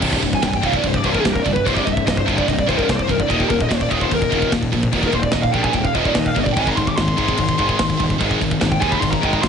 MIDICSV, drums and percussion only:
0, 0, Header, 1, 2, 480
1, 0, Start_track
1, 0, Key_signature, -3, "minor"
1, 0, Tempo, 408998
1, 22, Time_signature, 4, 2, 24, 8
1, 11132, End_track
2, 0, Start_track
2, 0, Title_t, "Drums"
2, 22, Note_on_c, 9, 49, 122
2, 22, Note_on_c, 9, 57, 80
2, 27, Note_on_c, 9, 36, 75
2, 139, Note_off_c, 9, 49, 0
2, 139, Note_off_c, 9, 57, 0
2, 145, Note_off_c, 9, 36, 0
2, 148, Note_on_c, 9, 36, 78
2, 265, Note_off_c, 9, 36, 0
2, 265, Note_on_c, 9, 36, 70
2, 265, Note_on_c, 9, 57, 58
2, 382, Note_off_c, 9, 57, 0
2, 383, Note_off_c, 9, 36, 0
2, 389, Note_on_c, 9, 36, 83
2, 501, Note_on_c, 9, 38, 102
2, 501, Note_on_c, 9, 57, 87
2, 506, Note_off_c, 9, 36, 0
2, 506, Note_on_c, 9, 36, 82
2, 618, Note_off_c, 9, 38, 0
2, 618, Note_off_c, 9, 57, 0
2, 624, Note_off_c, 9, 36, 0
2, 627, Note_on_c, 9, 36, 84
2, 744, Note_off_c, 9, 36, 0
2, 744, Note_on_c, 9, 36, 91
2, 744, Note_on_c, 9, 57, 63
2, 861, Note_off_c, 9, 36, 0
2, 861, Note_off_c, 9, 57, 0
2, 862, Note_on_c, 9, 36, 88
2, 979, Note_off_c, 9, 36, 0
2, 979, Note_on_c, 9, 57, 78
2, 982, Note_on_c, 9, 36, 80
2, 1096, Note_off_c, 9, 57, 0
2, 1100, Note_off_c, 9, 36, 0
2, 1103, Note_on_c, 9, 36, 94
2, 1217, Note_on_c, 9, 57, 65
2, 1221, Note_off_c, 9, 36, 0
2, 1222, Note_on_c, 9, 36, 84
2, 1334, Note_off_c, 9, 57, 0
2, 1339, Note_off_c, 9, 36, 0
2, 1344, Note_on_c, 9, 36, 85
2, 1462, Note_off_c, 9, 36, 0
2, 1468, Note_on_c, 9, 36, 82
2, 1471, Note_on_c, 9, 38, 119
2, 1471, Note_on_c, 9, 57, 73
2, 1586, Note_off_c, 9, 36, 0
2, 1589, Note_off_c, 9, 38, 0
2, 1589, Note_off_c, 9, 57, 0
2, 1590, Note_on_c, 9, 36, 84
2, 1707, Note_off_c, 9, 36, 0
2, 1711, Note_on_c, 9, 36, 84
2, 1715, Note_on_c, 9, 57, 60
2, 1828, Note_off_c, 9, 36, 0
2, 1831, Note_on_c, 9, 36, 82
2, 1832, Note_off_c, 9, 57, 0
2, 1948, Note_off_c, 9, 36, 0
2, 1953, Note_on_c, 9, 36, 90
2, 1965, Note_on_c, 9, 57, 77
2, 2071, Note_off_c, 9, 36, 0
2, 2072, Note_on_c, 9, 36, 79
2, 2083, Note_off_c, 9, 57, 0
2, 2190, Note_off_c, 9, 36, 0
2, 2195, Note_on_c, 9, 36, 78
2, 2207, Note_on_c, 9, 57, 49
2, 2312, Note_off_c, 9, 36, 0
2, 2313, Note_on_c, 9, 36, 80
2, 2324, Note_off_c, 9, 57, 0
2, 2431, Note_off_c, 9, 36, 0
2, 2431, Note_on_c, 9, 36, 77
2, 2441, Note_on_c, 9, 38, 104
2, 2441, Note_on_c, 9, 57, 69
2, 2548, Note_off_c, 9, 36, 0
2, 2552, Note_on_c, 9, 36, 84
2, 2559, Note_off_c, 9, 38, 0
2, 2559, Note_off_c, 9, 57, 0
2, 2669, Note_off_c, 9, 36, 0
2, 2675, Note_on_c, 9, 36, 91
2, 2689, Note_on_c, 9, 57, 55
2, 2792, Note_off_c, 9, 36, 0
2, 2794, Note_on_c, 9, 36, 90
2, 2806, Note_off_c, 9, 57, 0
2, 2912, Note_off_c, 9, 36, 0
2, 2913, Note_on_c, 9, 36, 84
2, 2926, Note_on_c, 9, 57, 68
2, 3030, Note_off_c, 9, 36, 0
2, 3034, Note_on_c, 9, 36, 80
2, 3044, Note_off_c, 9, 57, 0
2, 3151, Note_off_c, 9, 36, 0
2, 3154, Note_on_c, 9, 36, 83
2, 3166, Note_on_c, 9, 57, 53
2, 3272, Note_off_c, 9, 36, 0
2, 3272, Note_on_c, 9, 36, 78
2, 3283, Note_off_c, 9, 57, 0
2, 3389, Note_off_c, 9, 36, 0
2, 3394, Note_on_c, 9, 36, 90
2, 3398, Note_on_c, 9, 38, 105
2, 3398, Note_on_c, 9, 57, 84
2, 3511, Note_off_c, 9, 36, 0
2, 3513, Note_on_c, 9, 36, 83
2, 3516, Note_off_c, 9, 38, 0
2, 3516, Note_off_c, 9, 57, 0
2, 3630, Note_off_c, 9, 36, 0
2, 3630, Note_on_c, 9, 36, 85
2, 3639, Note_on_c, 9, 57, 54
2, 3747, Note_off_c, 9, 36, 0
2, 3752, Note_on_c, 9, 36, 75
2, 3756, Note_off_c, 9, 57, 0
2, 3869, Note_off_c, 9, 36, 0
2, 3872, Note_on_c, 9, 36, 89
2, 3881, Note_on_c, 9, 57, 78
2, 3989, Note_off_c, 9, 36, 0
2, 3990, Note_on_c, 9, 36, 78
2, 3999, Note_off_c, 9, 57, 0
2, 4106, Note_on_c, 9, 57, 60
2, 4108, Note_off_c, 9, 36, 0
2, 4109, Note_on_c, 9, 36, 85
2, 4224, Note_off_c, 9, 57, 0
2, 4226, Note_off_c, 9, 36, 0
2, 4231, Note_on_c, 9, 36, 83
2, 4348, Note_off_c, 9, 36, 0
2, 4352, Note_on_c, 9, 36, 88
2, 4359, Note_on_c, 9, 38, 114
2, 4359, Note_on_c, 9, 57, 87
2, 4469, Note_off_c, 9, 36, 0
2, 4471, Note_on_c, 9, 36, 86
2, 4477, Note_off_c, 9, 38, 0
2, 4477, Note_off_c, 9, 57, 0
2, 4589, Note_off_c, 9, 36, 0
2, 4590, Note_on_c, 9, 36, 94
2, 4596, Note_on_c, 9, 57, 60
2, 4708, Note_off_c, 9, 36, 0
2, 4709, Note_on_c, 9, 36, 93
2, 4714, Note_off_c, 9, 57, 0
2, 4826, Note_on_c, 9, 57, 76
2, 4827, Note_off_c, 9, 36, 0
2, 4829, Note_on_c, 9, 36, 91
2, 4943, Note_off_c, 9, 57, 0
2, 4946, Note_off_c, 9, 36, 0
2, 4951, Note_on_c, 9, 36, 87
2, 5068, Note_off_c, 9, 36, 0
2, 5071, Note_on_c, 9, 36, 80
2, 5076, Note_on_c, 9, 57, 57
2, 5189, Note_off_c, 9, 36, 0
2, 5189, Note_on_c, 9, 36, 71
2, 5194, Note_off_c, 9, 57, 0
2, 5307, Note_off_c, 9, 36, 0
2, 5307, Note_on_c, 9, 36, 84
2, 5312, Note_on_c, 9, 38, 123
2, 5312, Note_on_c, 9, 57, 89
2, 5425, Note_off_c, 9, 36, 0
2, 5429, Note_off_c, 9, 38, 0
2, 5429, Note_off_c, 9, 57, 0
2, 5429, Note_on_c, 9, 36, 82
2, 5547, Note_off_c, 9, 36, 0
2, 5550, Note_on_c, 9, 36, 77
2, 5556, Note_on_c, 9, 57, 65
2, 5667, Note_off_c, 9, 36, 0
2, 5669, Note_on_c, 9, 36, 83
2, 5673, Note_off_c, 9, 57, 0
2, 5780, Note_on_c, 9, 57, 82
2, 5785, Note_off_c, 9, 36, 0
2, 5785, Note_on_c, 9, 36, 85
2, 5898, Note_off_c, 9, 57, 0
2, 5901, Note_off_c, 9, 36, 0
2, 5901, Note_on_c, 9, 36, 86
2, 6011, Note_on_c, 9, 57, 49
2, 6019, Note_off_c, 9, 36, 0
2, 6021, Note_on_c, 9, 36, 74
2, 6129, Note_off_c, 9, 57, 0
2, 6139, Note_off_c, 9, 36, 0
2, 6140, Note_on_c, 9, 36, 80
2, 6240, Note_on_c, 9, 38, 108
2, 6240, Note_on_c, 9, 57, 81
2, 6256, Note_off_c, 9, 36, 0
2, 6256, Note_on_c, 9, 36, 94
2, 6357, Note_off_c, 9, 38, 0
2, 6357, Note_off_c, 9, 57, 0
2, 6374, Note_off_c, 9, 36, 0
2, 6377, Note_on_c, 9, 36, 81
2, 6494, Note_off_c, 9, 36, 0
2, 6496, Note_on_c, 9, 57, 64
2, 6500, Note_on_c, 9, 36, 76
2, 6613, Note_off_c, 9, 57, 0
2, 6617, Note_off_c, 9, 36, 0
2, 6619, Note_on_c, 9, 36, 92
2, 6725, Note_on_c, 9, 57, 76
2, 6737, Note_off_c, 9, 36, 0
2, 6737, Note_on_c, 9, 36, 80
2, 6843, Note_off_c, 9, 57, 0
2, 6854, Note_off_c, 9, 36, 0
2, 6861, Note_on_c, 9, 36, 80
2, 6977, Note_on_c, 9, 57, 55
2, 6978, Note_off_c, 9, 36, 0
2, 6981, Note_on_c, 9, 36, 80
2, 7094, Note_off_c, 9, 57, 0
2, 7099, Note_off_c, 9, 36, 0
2, 7105, Note_on_c, 9, 36, 79
2, 7217, Note_on_c, 9, 38, 120
2, 7217, Note_on_c, 9, 57, 88
2, 7222, Note_off_c, 9, 36, 0
2, 7223, Note_on_c, 9, 36, 83
2, 7334, Note_off_c, 9, 38, 0
2, 7334, Note_off_c, 9, 57, 0
2, 7340, Note_off_c, 9, 36, 0
2, 7346, Note_on_c, 9, 36, 80
2, 7462, Note_on_c, 9, 57, 59
2, 7464, Note_off_c, 9, 36, 0
2, 7467, Note_on_c, 9, 36, 78
2, 7580, Note_off_c, 9, 57, 0
2, 7584, Note_off_c, 9, 36, 0
2, 7585, Note_on_c, 9, 36, 76
2, 7702, Note_off_c, 9, 36, 0
2, 7708, Note_on_c, 9, 36, 83
2, 7708, Note_on_c, 9, 57, 76
2, 7825, Note_off_c, 9, 57, 0
2, 7826, Note_off_c, 9, 36, 0
2, 7828, Note_on_c, 9, 36, 78
2, 7945, Note_off_c, 9, 36, 0
2, 7949, Note_on_c, 9, 36, 77
2, 7952, Note_on_c, 9, 57, 52
2, 8066, Note_off_c, 9, 36, 0
2, 8066, Note_on_c, 9, 36, 80
2, 8069, Note_off_c, 9, 57, 0
2, 8183, Note_off_c, 9, 36, 0
2, 8187, Note_on_c, 9, 38, 108
2, 8187, Note_on_c, 9, 57, 82
2, 8189, Note_on_c, 9, 36, 83
2, 8304, Note_off_c, 9, 38, 0
2, 8304, Note_off_c, 9, 57, 0
2, 8306, Note_off_c, 9, 36, 0
2, 8308, Note_on_c, 9, 36, 85
2, 8422, Note_on_c, 9, 57, 67
2, 8425, Note_off_c, 9, 36, 0
2, 8428, Note_on_c, 9, 36, 83
2, 8539, Note_off_c, 9, 57, 0
2, 8545, Note_off_c, 9, 36, 0
2, 8549, Note_on_c, 9, 36, 96
2, 8655, Note_on_c, 9, 57, 82
2, 8667, Note_off_c, 9, 36, 0
2, 8667, Note_on_c, 9, 36, 80
2, 8772, Note_off_c, 9, 57, 0
2, 8785, Note_off_c, 9, 36, 0
2, 8785, Note_on_c, 9, 36, 82
2, 8898, Note_on_c, 9, 57, 61
2, 8903, Note_off_c, 9, 36, 0
2, 8908, Note_on_c, 9, 36, 76
2, 9015, Note_off_c, 9, 57, 0
2, 9025, Note_off_c, 9, 36, 0
2, 9025, Note_on_c, 9, 36, 75
2, 9142, Note_off_c, 9, 36, 0
2, 9145, Note_on_c, 9, 38, 115
2, 9145, Note_on_c, 9, 57, 98
2, 9148, Note_on_c, 9, 36, 97
2, 9262, Note_off_c, 9, 38, 0
2, 9262, Note_off_c, 9, 57, 0
2, 9266, Note_off_c, 9, 36, 0
2, 9270, Note_on_c, 9, 36, 91
2, 9385, Note_on_c, 9, 57, 59
2, 9387, Note_off_c, 9, 36, 0
2, 9389, Note_on_c, 9, 36, 90
2, 9502, Note_off_c, 9, 57, 0
2, 9507, Note_off_c, 9, 36, 0
2, 9508, Note_on_c, 9, 36, 78
2, 9626, Note_off_c, 9, 36, 0
2, 9631, Note_on_c, 9, 36, 90
2, 9632, Note_on_c, 9, 57, 76
2, 9749, Note_off_c, 9, 36, 0
2, 9750, Note_off_c, 9, 57, 0
2, 9752, Note_on_c, 9, 36, 81
2, 9869, Note_off_c, 9, 36, 0
2, 9874, Note_on_c, 9, 36, 80
2, 9883, Note_on_c, 9, 57, 59
2, 9991, Note_off_c, 9, 36, 0
2, 9991, Note_on_c, 9, 36, 88
2, 10001, Note_off_c, 9, 57, 0
2, 10107, Note_on_c, 9, 38, 105
2, 10107, Note_on_c, 9, 57, 79
2, 10108, Note_off_c, 9, 36, 0
2, 10110, Note_on_c, 9, 36, 87
2, 10225, Note_off_c, 9, 38, 0
2, 10225, Note_off_c, 9, 57, 0
2, 10227, Note_off_c, 9, 36, 0
2, 10230, Note_on_c, 9, 36, 90
2, 10345, Note_on_c, 9, 57, 59
2, 10348, Note_off_c, 9, 36, 0
2, 10352, Note_on_c, 9, 36, 89
2, 10463, Note_off_c, 9, 57, 0
2, 10469, Note_off_c, 9, 36, 0
2, 10469, Note_on_c, 9, 36, 93
2, 10586, Note_off_c, 9, 36, 0
2, 10589, Note_on_c, 9, 36, 88
2, 10595, Note_on_c, 9, 57, 81
2, 10707, Note_off_c, 9, 36, 0
2, 10712, Note_on_c, 9, 36, 86
2, 10713, Note_off_c, 9, 57, 0
2, 10829, Note_off_c, 9, 36, 0
2, 10835, Note_on_c, 9, 36, 86
2, 10841, Note_on_c, 9, 57, 56
2, 10950, Note_off_c, 9, 36, 0
2, 10950, Note_on_c, 9, 36, 77
2, 10958, Note_off_c, 9, 57, 0
2, 11068, Note_off_c, 9, 36, 0
2, 11071, Note_on_c, 9, 36, 93
2, 11074, Note_on_c, 9, 38, 127
2, 11074, Note_on_c, 9, 57, 84
2, 11132, Note_off_c, 9, 36, 0
2, 11132, Note_off_c, 9, 38, 0
2, 11132, Note_off_c, 9, 57, 0
2, 11132, End_track
0, 0, End_of_file